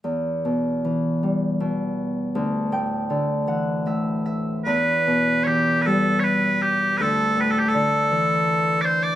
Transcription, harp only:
X:1
M:3/4
L:1/8
Q:1/4=79
K:Em
V:1 name="Harp"
z6 | z g2 f e e | z6 | z6 |]
V:2 name="Harp" clef=bass
E,, B,, E, G, B,,2 | D,, A,, D, E, A,,2 | E,, B,, E, G,3 | D,, A,, D, E,3 |]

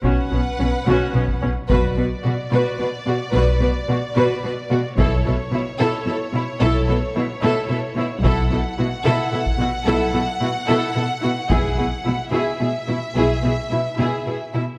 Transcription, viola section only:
X:1
M:6/8
L:1/8
Q:3/8=73
K:Bdor
V:1 name="Viola section"
[CF] [B,C] C [CF] [B,C] C | F F F F F F | F F F F F F | E E E E E E |
E E E E E E | E E E E E E | E E E E E E | E E E E E E |
E E E E E E |]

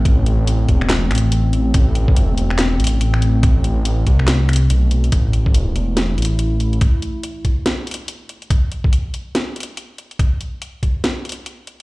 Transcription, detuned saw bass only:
X:1
M:4/4
L:1/8
Q:"Swing 16ths" 1/4=142
K:Am
V:1 name="Detuned saw bass" clef=bass
A,,,3 E,,,2 A,,,3 | A,,,3 E,,,2 A,,,3- | A,,,3 C,,3 B,,,2 | A,,,3 E,,,2 A,,,3 |
z8 | z8 | z8 |]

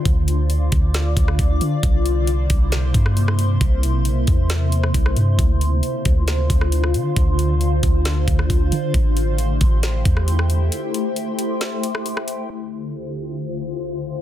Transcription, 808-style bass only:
X:1
M:4/4
L:1/16
Q:1/4=135
K:Dm
V:1 name="808-style bass" clef=bass
D,,6 D,,4 D,,2 D,,2 D,2 | C,,6 C,,4 G,,6 | C,,3 B,,,3/2 C,,3/2 E,,6 C,,2 G,,2 | D,,4 z2 D,,4 D,,4 D,2 |
D,,6 D,,4 D,,2 D,,2 D,2 | A,,,6 A,,,4 E,,6 | z16 | z16 |]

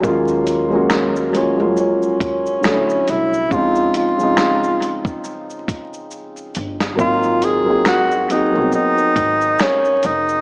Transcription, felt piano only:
X:1
M:4/4
L:1/16
Q:"Swing 16ths" 1/4=69
K:Abmix
V:1 name="Felt piano"
[G,A,B,DF]2 z [G,A,B,DG]2 z [G,A,B,DF] [F,G,A,B,DF]4- [F,G,A,B,DF] [=D,^F,=A,^C=D=E]3 z | [D,F,A,CE]2 z [D,F,A,CE]6 z6 z | [G,B,CEF]2 z [G,B,CEA]2 z [G,B,CEA] [G,B,_C=CEG]6 z3 |]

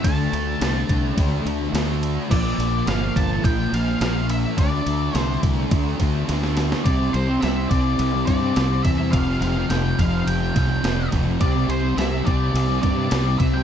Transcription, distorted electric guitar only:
X:1
M:4/4
L:1/16
Q:1/4=106
K:Cmix
V:1 name="Distorted electric guitar" clef=bass
[D,A,D]4 [D,A,D]4 [D,A,D]2 [A,D]2 [D,A,D]4 | [B,,F,B,]4 [B,,F,B,]4 [B,,F,B,]2 [F,B,]2 [B,,F,B,]4 | [D,A,D]4 [D,A,D]4 [D,A,D]2 [A,D]2 [D,A,D]4 | [C,G,C] [G,C] [C,G,C] [G,C] [C,G,C]2 [C,G,C]3 [G,C] [C,G,C] [G,C] [C,G,C]2 [C,G,C] [G,C] |
[F,,C,F,] [C,F,] [F,,C,F,] [C,F,] [F,,C,F,]2 [F,,C,F,]3 [C,F,] [F,,C,F,] [C,F,] [F,,C,F,]2 [F,,C,F,] [C,F,] | [C,G,C] [G,C] [C,G,C] [G,C] [C,G,C]2 [C,G,C]3 [G,C] [C,G,C] [G,C] [C,G,C]2 [C,G,C] [G,C] |]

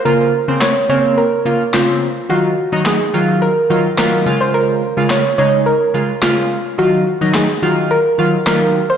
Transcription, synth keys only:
X:1
M:4/4
L:1/16
Q:1/4=107
K:Ebdor
V:1 name="Synth keys" clef=bass
[D,B,F]2 z [D,B,C]2 z [D,B,C]2 z2 [D,B,F] z [D,B,C]2 z2 | [E,G,F]2 z [E,G,E]2 z [E,G,F]2 z2 [E,G,F] z [E,G,F]2 [D,A,F]2- | [D,A,F]2 z [D,A,F]2 z [D,A,E]2 z2 [D,A,F] z [D,A,F]2 z2 | [E,G,F]2 z [E,G,E]2 z [E,G,F]2 z2 [E,G,F] z [E,G,F]2 z2 |]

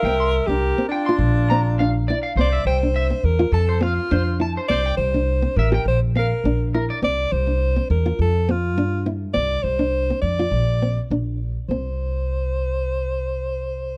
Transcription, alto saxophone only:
X:1
M:4/4
L:1/16
Q:1/4=103
K:Cmix
V:1 name="Alto saxophone"
B3 G3 D8 z2 | d2 c4 B2 A2 F4 z2 | d2 c4 B2 c2 B4 z2 | d2 c4 B2 A2 F4 z2 |
d2 c4 d6 z4 | c16 |]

